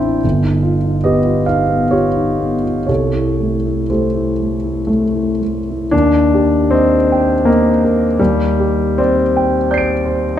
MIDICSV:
0, 0, Header, 1, 2, 480
1, 0, Start_track
1, 0, Tempo, 798935
1, 142, Time_signature, 3, 2, 24, 8
1, 626, Tempo, 878477
1, 1106, Tempo, 961538
1, 1586, Tempo, 1000000
1, 2546, Tempo, 1043478
1, 3026, Tempo, 801068
1, 3506, Tempo, 733496
1, 4466, Tempo, 800000
1, 4946, Tempo, 697674
1, 5909, End_track
2, 0, Start_track
2, 0, Title_t, "Grand piano"
2, 0, Program_c, 0, 0
2, 0, Control_c, 0, 64, 127
2, 0, Note_on_c, 0, 33, 48
2, 0, Note_on_c, 0, 60, 38
2, 0, Note_on_c, 0, 62, 37
2, 0, Note_on_c, 0, 64, 37
2, 0, Note_on_c, 0, 74, 48
2, 0, Note_on_c, 0, 76, 49
2, 0, Note_on_c, 0, 79, 68
2, 0, Note_on_c, 0, 84, 76
2, 37, Note_off_c, 0, 64, 0
2, 37, Note_on_c, 0, 64, 39
2, 99, Note_off_c, 0, 60, 0
2, 115, Note_off_c, 0, 33, 0
2, 115, Note_off_c, 0, 74, 0
2, 116, Note_off_c, 0, 76, 0
2, 135, Note_off_c, 0, 79, 0
2, 145, Note_on_c, 0, 31, 42
2, 147, Note_off_c, 0, 64, 0
2, 151, Control_c, 0, 64, 0
2, 155, Note_off_c, 0, 62, 0
2, 156, Note_off_c, 0, 84, 0
2, 245, Control_c, 0, 64, 127
2, 256, Note_on_c, 0, 63, 34
2, 376, Note_on_c, 0, 65, 37
2, 449, Note_off_c, 0, 63, 0
2, 505, Note_on_c, 0, 63, 35
2, 574, Note_off_c, 0, 65, 0
2, 623, Note_on_c, 0, 75, 69
2, 630, Note_on_c, 0, 59, 35
2, 630, Note_on_c, 0, 71, 48
2, 631, Note_on_c, 0, 67, 52
2, 698, Note_off_c, 0, 63, 0
2, 744, Note_on_c, 0, 65, 35
2, 817, Note_off_c, 0, 59, 0
2, 848, Note_off_c, 0, 67, 0
2, 848, Note_off_c, 0, 71, 0
2, 856, Note_on_c, 0, 77, 70
2, 861, Note_off_c, 0, 75, 0
2, 865, Note_on_c, 0, 63, 35
2, 935, Note_off_c, 0, 65, 0
2, 985, Note_on_c, 0, 59, 32
2, 1058, Note_off_c, 0, 63, 0
2, 1100, Note_on_c, 0, 73, 56
2, 1103, Note_off_c, 0, 77, 0
2, 1104, Note_on_c, 0, 67, 47
2, 1105, Note_on_c, 0, 65, 44
2, 1176, Note_off_c, 0, 59, 0
2, 1226, Note_on_c, 0, 63, 32
2, 1344, Note_on_c, 0, 59, 30
2, 1413, Note_off_c, 0, 63, 0
2, 1454, Note_off_c, 0, 65, 0
2, 1461, Note_on_c, 0, 65, 28
2, 1537, Note_off_c, 0, 59, 0
2, 1565, Note_off_c, 0, 67, 0
2, 1567, Note_off_c, 0, 31, 0
2, 1570, Note_off_c, 0, 73, 0
2, 1578, Note_on_c, 0, 73, 46
2, 1586, Note_off_c, 0, 65, 0
2, 1586, Note_on_c, 0, 36, 33
2, 1586, Note_on_c, 0, 69, 35
2, 1587, Note_on_c, 0, 67, 35
2, 1597, Control_c, 0, 64, 0
2, 1690, Control_c, 0, 64, 127
2, 1708, Note_on_c, 0, 64, 27
2, 1834, Note_on_c, 0, 57, 27
2, 1906, Note_off_c, 0, 64, 0
2, 1958, Note_on_c, 0, 64, 28
2, 2029, Note_off_c, 0, 57, 0
2, 2057, Note_off_c, 0, 67, 0
2, 2057, Note_off_c, 0, 69, 0
2, 2072, Note_off_c, 0, 73, 0
2, 2073, Note_on_c, 0, 72, 38
2, 2080, Note_on_c, 0, 67, 29
2, 2080, Note_on_c, 0, 69, 28
2, 2082, Note_on_c, 0, 57, 29
2, 2150, Note_off_c, 0, 64, 0
2, 2198, Note_on_c, 0, 64, 27
2, 2269, Note_off_c, 0, 57, 0
2, 2313, Note_on_c, 0, 57, 27
2, 2383, Note_off_c, 0, 64, 0
2, 2429, Note_on_c, 0, 64, 27
2, 2499, Note_off_c, 0, 57, 0
2, 2540, Note_on_c, 0, 57, 49
2, 2547, Note_off_c, 0, 57, 0
2, 2550, Note_on_c, 0, 57, 27
2, 2615, Note_off_c, 0, 64, 0
2, 2665, Note_on_c, 0, 64, 28
2, 2742, Note_off_c, 0, 57, 0
2, 2776, Note_off_c, 0, 69, 0
2, 2777, Note_off_c, 0, 67, 0
2, 2792, Note_off_c, 0, 72, 0
2, 2793, Note_on_c, 0, 57, 26
2, 2872, Note_off_c, 0, 64, 0
2, 2924, Note_on_c, 0, 64, 27
2, 2984, Note_off_c, 0, 57, 0
2, 3007, Note_off_c, 0, 36, 0
2, 3021, Note_on_c, 0, 62, 68
2, 3025, Note_on_c, 0, 39, 41
2, 3028, Note_off_c, 0, 64, 0
2, 3035, Control_c, 0, 64, 0
2, 3129, Control_c, 0, 64, 127
2, 3276, Note_on_c, 0, 67, 33
2, 3493, Note_on_c, 0, 60, 71
2, 3502, Note_off_c, 0, 62, 0
2, 3506, Note_on_c, 0, 75, 34
2, 3661, Note_off_c, 0, 67, 0
2, 3765, Note_on_c, 0, 79, 39
2, 3904, Note_off_c, 0, 75, 0
2, 3981, Note_on_c, 0, 58, 64
2, 3991, Note_off_c, 0, 60, 0
2, 3993, Note_on_c, 0, 75, 37
2, 4140, Note_off_c, 0, 79, 0
2, 4239, Note_on_c, 0, 70, 38
2, 4367, Note_off_c, 0, 75, 0
2, 4439, Note_off_c, 0, 39, 0
2, 4457, Note_off_c, 0, 58, 0
2, 4466, Note_on_c, 0, 55, 63
2, 4470, Note_off_c, 0, 70, 0
2, 4474, Control_c, 0, 64, 0
2, 4474, Note_on_c, 0, 39, 43
2, 4577, Control_c, 0, 64, 127
2, 4709, Note_on_c, 0, 67, 35
2, 4939, Note_on_c, 0, 60, 68
2, 4946, Note_off_c, 0, 55, 0
2, 4950, Note_on_c, 0, 74, 38
2, 5102, Note_off_c, 0, 67, 0
2, 5202, Note_on_c, 0, 79, 43
2, 5343, Note_off_c, 0, 74, 0
2, 5432, Note_off_c, 0, 60, 0
2, 5438, Note_on_c, 0, 91, 30
2, 5441, Note_on_c, 0, 74, 41
2, 5459, Note_on_c, 0, 96, 30
2, 5484, Note_on_c, 0, 98, 30
2, 5581, Note_off_c, 0, 79, 0
2, 5677, Note_on_c, 0, 72, 42
2, 5815, Note_off_c, 0, 74, 0
2, 5879, Note_off_c, 0, 91, 0
2, 5882, Note_off_c, 0, 39, 0
2, 5889, Note_off_c, 0, 96, 0
2, 5902, Note_off_c, 0, 98, 0
2, 5907, Note_off_c, 0, 72, 0
2, 5909, End_track
0, 0, End_of_file